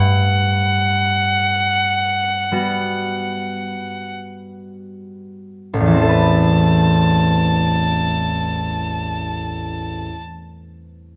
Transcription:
Already playing: G2 F#5
2.52 G3 B3 F#4
5.73 A1
5.80 E2
5.87 E3 A5
5.94 C4
6.02 A4
6.09 B4

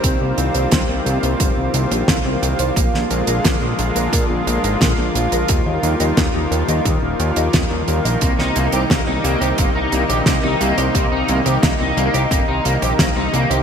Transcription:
Already playing: D#3 G3 A#3 C4
0.04 C2 C4 F4, kick, closed hi-hat
0.21 C2 C4
0.38 C2 C4, closed hi-hat
0.55 C2 C5, closed hi-hat
0.71 C2 C4, kick, snare, closed hi-hat
0.89 C2 C4
1.06 C2 G4, closed hi-hat
1.23 C2 C5, closed hi-hat
1.40 G1 C4, kick, closed hi-hat
1.57 C2 C4
1.74 C2 C4, closed hi-hat
1.91 A#1 C5, closed hi-hat
2.08 C2 C4, kick, snare, closed hi-hat
2.25 C2 C4
2.42 C2 G4, closed hi-hat
2.59 C2 C5, closed hi-hat
2.76 A#1 D3 F3 G#3 A#3, kick, closed hi-hat
2.93 A#1 A#3, snare
3.10 A#1 A#3, closed hi-hat
3.27 A#1 A#4, closed hi-hat
3.44 A#1 A#3, kick, snare, closed hi-hat
3.61 A#1 A#3
3.79 A#1 F4, closed hi-hat
3.96 A#1 A#4, closed hi-hat
4.13 A#2 A#3, kick, closed hi-hat
4.30 A#1 A#3
4.47 A#1 A#3, closed hi-hat
4.64 G#1 A#4, closed hi-hat
4.81 A#1 A#3, kick, snare, closed hi-hat
4.98 A#1 A#3
5.15 A#1 F4, closed hi-hat
5.32 A#1 A#4, closed hi-hat
5.48 D#2 D#3 G3 D#4, kick, closed hi-hat
5.66 D#2 D#4
5.83 D#2 D#4, closed hi-hat
6.00 D#2 D#5, closed hi-hat
6.17 D#2 D#4, kick, snare, closed hi-hat
6.34 D#2 D#4
6.51 D#2 A#4, closed hi-hat
6.68 D#2 D#5, closed hi-hat
6.85 D#2 D#4, kick, closed hi-hat
7.02 D#1 D#4
7.19 D#2 D#4, closed hi-hat
7.36 D#2 D#5, closed hi-hat
7.53 D#2 D#4, kick, snare, closed hi-hat
7.71 D#2 D#4
7.88 D#2 A#4, closed hi-hat
8.05 A#1 D#5, closed hi-hat
8.21 C2 C3 A#3 C4 D#4, kick, closed hi-hat
8.39 C2 C4 D#4, snare
8.56 C2 A#3 C4, closed hi-hat
8.72 C2 G4 C5, closed hi-hat
8.90 C2 A#3 C4, kick, snare, closed hi-hat
9.07 C2 C4 D#4
9.24 C2 A#3 G4, closed hi-hat
9.41 C2 G4 C5, closed hi-hat
9.58 G1 A#3 C4, kick, closed hi-hat
9.75 C2 C4 D#4
9.92 C2 A#3 C4, closed hi-hat
10.09 A#1 G4 C5, closed hi-hat
10.26 C2 A#3 C4, kick, snare, closed hi-hat
10.43 C2 C4 D#4
10.60 C2 A#3 G4, closed hi-hat
10.78 C2 G4 C5, closed hi-hat
10.94 C2 A#3 C4, kick, closed hi-hat
11.12 C2 C4 D#4
11.28 C2 A#3 C4, closed hi-hat
11.46 C2 G4 C5, closed hi-hat
11.63 C2 A#3 C4, kick, snare, closed hi-hat
11.80 C2 C4 D#4
11.97 C2 A#3 G4, closed hi-hat
12.14 C2 G4 C5, closed hi-hat
12.31 G1 A#3 C4, kick, closed hi-hat
12.48 C2 C4 D#4
12.65 C2 A#3 C4, closed hi-hat
12.82 A#1 G4 C5, closed hi-hat
12.99 C2 A#3 C4, kick, snare, closed hi-hat
13.16 C2 C4 D#4
13.33 C2 A#3 G4, closed hi-hat
13.50 C2 G4 C5, closed hi-hat

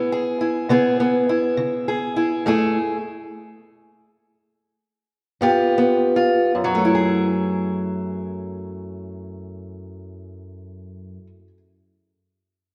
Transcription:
Already playing: C#3 B3 E4 G#4
0.12 G#4
0.41 E4
0.69 C#3 B3 E4 G#4
1.00 B3
1.29 E4
1.57 C#3
1.88 G#4
2.16 E4
2.46 F#2 A3 E4 G#4
5.41 G2 B3 F4 G4
5.78 B3
6.16 F4
6.55 F#2
6.64 F#3
6.75 A3
6.85 E4
6.95 G#4

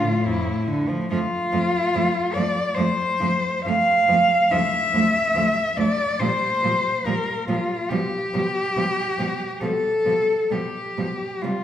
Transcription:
Already playing: A2 A3 F4
0.05 A2
0.26 F2 E4
0.46 A2
0.67 D3
0.89 F3
1.10 F2 F3 A3 F4
1.53 F2 F3 A3
1.94 F2 F3 A3
2.34 F2 F3 D5
2.38 A3
2.75 F2 F3 A3 C5
3.20 F2 F3 A3
3.65 F2 F3 A3 F5
4.08 F2 F3 A3
4.51 D2 F3 E5
4.55 A3
4.94 D2 F3 A3
5.35 D2 F3 A3
5.77 D2 F3 A3 D5
6.19 A#2 F3 G3 C5
6.63 A#2 F3 G3
7.06 A#2 F3 G3 A#4
7.48 A#2 F3 G3 F4
7.90 B2 F3 G3 G4
8.34 B2 F3 G3
8.77 B2 F3 G3
9.19 B2 F3 G3
9.61 B2 F3 G3 A4
10.05 B2 F3 G3
10.50 B2 F3 G3 G4
10.97 B2 F3 G3
11.42 C3 G3 F4

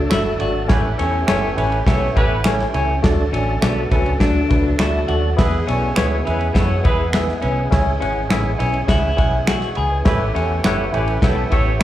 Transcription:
Already playing: F#3 A3 D4 A4
0.09 G1 A3 D4 E4 F#4 A4 E5, finger snap, snare, ride
0.39 G#1 A3 D4 F#4 A4 D5, ride
0.68 A1 E3 C#4 E4 G4 A4 B4 C#5, kick, snare, ride
0.98 E2 C#4 E4 G4 A4 C#5, ride
1.27 G1 B3 C#4 E4 G4 A4 C#5, finger snap, snare, ride
1.56 A1 C#4 E4 G4 A4 B4 C#5, ride
1.72 ride
1.86 B1 B3 C#4 E4 G4 A4 C#5 E5, kick, snare, ride
2.16 A1 B3 C#4 E4 G4 A4 B4 C#5, kick, ride
2.44 C#4 E4 G4 A4 C#5, finger snap, snare, ride
2.60 snare, ride
2.73 C#2 C#4 E4 G4 A4 C#5, ride
3.02 D2 F#3 A3 D4 F#4 A4 D5, kick, snare, ride
3.32 A1 A3 C#4 D4 F#4 A4 D5, ride
3.61 B1 A3 B3 D4 F#4 A4 D5, finger snap, snare, ride
3.91 C#2 A3 C#4 D4 F#4 A4 B4, kick, ride
4.06 ride
4.19 D2 A3 D4 F#4 A4 D5, kick, snare, ride
4.48 C#2 A3 D4 F#4 A4 B4, kick, ride
4.78 D2 A3 D4 E4 F#4 A4 D5, finger snap, snare, ride
5.07 D#2 A3 D4 F#4 A4 D5, ride
5.37 E2 E3 G#3 B3 E4 G#4 B4 E5, kick, snare, ride
5.67 B1 B3 C#4 E4 F#4 G#4 A4 B4 C#5 D5, ride
5.96 D2 B3 E4 F#4 G#4 A4 B4 C#5, finger snap, snare, ride
6.25 E2 B3 C#4 E4 G#4 B4 E5, ride
6.41 ride
6.54 F#2 B3 E4 F#4 G#4 A4 B4 C#5 E5, kick, snare, ride
6.84 E2 B3 E4 G#4 B4 E5, kick, ride
7.13 B3 E4 G#4 B4 E5, finger snap, snare, ride
7.29 snare
7.41 C2 B3 C#4 E4 G#4 B4 E5, ride
7.71 C#2 C#4 E4 G#4 C#5 E5, kick, snare, ride
8.01 G#1 C#4 E4 G#4 C#5 F#5, ride
8.29 A1 B3 C#4 E4 G#4 C#5 E5, finger snap, snare, ride
8.59 B1 C#4 E4 G#4 C#5 E5, ride
8.74 ride
8.87 C#2 C#4 E4 G#4 C#5 F#5, kick, snare, ride
9.17 B1 C#4 E4 G#4 C#5 F#5, kick, ride
9.47 F#4 G#5 E6, finger snap, snare, ride
9.62 E5 C#6, snare, ride
9.75 C#2 G#4 B5, ride
9.91 B4 G#5
10.05 A1 A3 E4 G4 A4 B4 C#5 E5, kick, snare, ride
10.34 E2 C#4 E4 G4 A4 C#5 F#5, ride
10.64 G1 B3 E4 G4 A4 C#5 F#5, finger snap, snare, ride
10.92 A1 C#4 E4 G4 A4 B4 C#5 G5, ride
11.07 ride
11.22 B1 B3 C#4 E4 G4 A4 C#5 G5, kick, snare, ride
11.50 A1 B3 E4 G4 A4 C#5 E5, kick, ride
11.79 E4 G4

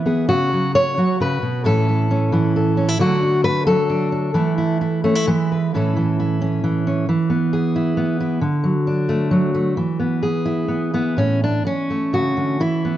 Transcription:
Already playing: E3 E4
0.06 B3 G#4
0.29 C#3 F#4
0.53 F#3
0.75 C#5
0.97 F#3 F#4
1.20 C#3 B4
1.42 B2
1.64 A2 E3 C#4 E4 A4
1.89 E4
2.11 C#4
2.32 E3 E4
2.56 A4
2.77 C#4
2.88 E4
2.99 D3 F#3 A3 D4 F#4
3.23 D4
3.44 B4
3.67 F#3 A4
3.90 D4
4.12 D4
4.34 E3 A3 E4
4.58 E4
4.81 E4
5.04 A3 C#4
5.15 E4
5.27 E3 G#3 E4
5.52 B4
5.74 A2 E3 C#4 E4 A4
5.97 E3
6.20 E4
6.42 C#4
6.64 E3
6.87 C#4
7.09 E3
7.30 B3
7.53 G#4
7.76 E4
7.97 B3
8.20 E4
8.41 D3
8.64 F#3
8.87 D4
9.09 A3
9.31 F#3
9.54 A3
9.77 E3
9.99 B3
10.23 G#4
10.45 E4
10.68 B3
10.94 B3 E4
11.17 A2 C#4
11.44 D4
11.65 C#4, muted steel-string acoustic guitar stroke
11.90 A3
12.13 C#3 F#4
12.37 D3
12.60 E3 E4
12.85 B3

